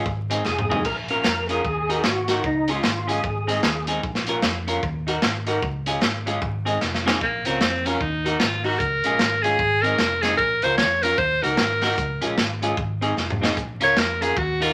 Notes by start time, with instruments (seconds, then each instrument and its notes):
0.06 fingered electric bass G#1, muted clean electric guitar stroke, kick
0.29 upright piano G#3 C4 D#4 G#4, clean electric guitar C4 D#4 G#4, closed hi-hat
0.45 fingered electric bass F1, tonewheel organ G#4, snare, clap
0.59 mid tom
0.69 upright piano G#3 C4 D#4 G#4, clean electric guitar C4 D#4 G#4, floor tom
0.85 fingered electric bass A#1, tonewheel organ A#4, kick, crash
1.08 upright piano A#3 C#4 F4 A#4, clean electric guitar C#4 F4 A#4, tonewheel organ A#4, closed hi-hat
1.24 fingered electric bass F2, muted clean electric guitar stroke, snare, clap
1.48 upright piano A#3 C#4 F4 A#4, clean electric guitar C#4 F4 A#4, tonewheel organ G#4, closed hi-hat
1.65 fingered electric bass D#2, kick
1.88 upright piano A#3 D#4 F#4 A#4, clean electric guitar D#4 F#4 A#4, closed hi-hat
2.04 fingered electric bass G#1, tonewheel organ F#4, snare, clap
2.28 upright piano A#3 D#4 F#4 A#4, clean electric guitar D#4 F#4 A#4, snare, closed hi-hat
2.44 fingered electric bass C#2, tonewheel organ D#4, kick
2.68 upright piano G#3 C#4 F4 G#4, clean electric guitar C#4 F4 G#4, tonewheel organ F4, closed hi-hat
2.84 fingered electric bass G#1, snare, clap
3.07 upright piano G#3 C#4 F4 G#4, clean electric guitar C#4 F4 G#4, closed hi-hat
3.13 tonewheel organ G#4
3.23 fingered electric bass G#1, muted clean electric guitar stroke, kick
3.47 upright piano G#3 C4 D#4 G#4, clean electric guitar C4 D#4 G#4, closed hi-hat
3.63 fingered electric bass D#2, snare, clap
3.87 upright piano G#3 C4 D#4 G#4, clean electric guitar C4 D#4 G#4, closed hi-hat
4.04 fingered electric bass A#1, kick
4.15 snare
4.27 upright piano A#3 C#4 F4 A#4, clean electric guitar C#4 F4 A#4, closed hi-hat
4.43 fingered electric bass F2, muted clean electric guitar stroke, snare, clap
4.67 upright piano A#3 C#4 F4 A#4, clean electric guitar C#4 F4 A#4, closed hi-hat
4.83 fingered electric bass D#2, kick
5.07 upright piano A#3 D#4 F#4 A#4, clean electric guitar D#4 F#4 A#4, closed hi-hat
5.22 fingered electric bass G#1, snare, clap
5.46 upright piano A#3 D#4 F#4 A#4, clean electric guitar D#4 F#4 A#4, closed hi-hat
5.62 fingered electric bass C#2, kick
5.86 upright piano G#3 C#4 F4 G#4, clean electric guitar C#4 F4 G#4, closed hi-hat
6.02 fingered electric bass G#1, snare, clap
6.26 upright piano G#3 C#4 F4 G#4, clean electric guitar C#4 F4 G#4, closed hi-hat
6.42 fingered electric bass G#1, muted clean electric guitar stroke, kick
6.65 upright piano G#3 C4 D#4 G#4, clean electric guitar C4 D#4 G#4, closed hi-hat
6.81 snare, clap
6.94 snare
7.05 upright piano G#3 C4 D#4 G#4, clean electric guitar C4 D#4 G#4, snare
7.21 fingered electric bass A#1, alto saxophone A#3, kick
7.45 fingered electric bass C#2, upright piano A#3 C#4 F4 A#4, alto saxophone C4, clean electric guitar C#4 F4 A#4, closed hi-hat
7.61 fingered electric bass F2, snare
7.85 upright piano A#3 C#4 F4 A#4, alto saxophone C#4, clean electric guitar C#4 F4 A#4, closed hi-hat
8.01 fingered electric bass D#2, alto saxophone D#4, kick
8.24 upright piano A#3 D#4 F#4 A#4, clean electric guitar D#4 F#4 A#4, closed hi-hat
8.39 fingered electric bass G#1, alto saxophone F4, snare
8.64 upright piano A#3 D#4 F#4 A#4, clean electric guitar D#4 F#4 A#4, alto saxophone F#4, open hi-hat
8.79 fingered electric bass C#2, alto saxophone A#4, kick, hi-hat pedal
9.04 fingered electric bass A#1, upright piano G#3 C#4 F4 G#4, clean electric guitar C#4 F4 G#4, closed hi-hat
9.19 fingered electric bass G#1, snare
9.42 upright piano G#3 C#4 F4 G#4, clean electric guitar C#4 F4 G#4, alto saxophone G#4, closed hi-hat
9.59 fingered electric bass G#1, kick
9.82 upright piano G#3 C4 D#4 G#4, clean electric guitar C4 D#4 G#4, alto saxophone A#4, closed hi-hat
9.99 fingered electric bass F1, snare
10.22 upright piano G#3 C4 D#4 G#4, clean electric guitar C4 D#4 G#4, alto saxophone G#4, snare, closed hi-hat
10.37 fingered electric bass A#1, alto saxophone A#4, kick
10.62 fingered electric bass C#2, upright piano A#3 C#4 F4 A#4, clean electric guitar C#4 F4 A#4, alto saxophone C5, closed hi-hat
10.78 fingered electric bass F2, alto saxophone C#5, snare
11.03 upright piano A#3 C#4 F4 A#4, clean electric guitar C#4 F4 A#4, alto saxophone A#4, closed hi-hat
11.18 fingered electric bass D#2, alto saxophone C5, kick
11.42 fingered electric bass C#2, upright piano A#3 D#4 F#4 A#4, clean electric guitar D#4 F#4 A#4, alto saxophone A#4, closed hi-hat
11.57 fingered electric bass G#1, snare
11.81 upright piano A#3 D#4 F#4 A#4, clean electric guitar D#4 F#4 A#4, snare, open hi-hat
11.98 fingered electric bass C#2, kick, hi-hat pedal
12.21 fingered electric bass A#1, upright piano G#3 C#4 F4 G#4, clean electric guitar C#4 F4 G#4, closed hi-hat
12.38 fingered electric bass G#1, snare
12.62 upright piano G#3 C#4 F4 G#4, clean electric guitar C#4 F4 G#4, closed hi-hat
12.77 fingered electric bass G#1, kick
13.01 upright piano G#3 C4 D#4 G#4, clean electric guitar C4 D#4 G#4, closed hi-hat
13.17 fingered electric bass F1, snare
13.30 mid tom
13.40 upright piano G#3 C4 D#4 G#4, clean electric guitar C4 D#4 G#4, snare
13.57 fingered electric bass A#1, kick, hi-hat pedal
13.80 fingered electric bass C#2, upright piano A#3 C#4 F4 A#4, clean electric guitar C#4 F4 A#4, alto saxophone C#5, closed hi-hat
13.96 fingered electric bass F2, alto saxophone A#4, snare
14.21 upright piano A#3 C#4 F4 A#4, clean electric guitar C#4 F4 A#4, alto saxophone G#4, closed hi-hat
14.37 fingered electric bass D#2, alto saxophone F#4, kick
14.60 upright piano A#3 D#4 F#4 A#4, clean electric guitar D#4 F#4 A#4, alto saxophone F4, closed hi-hat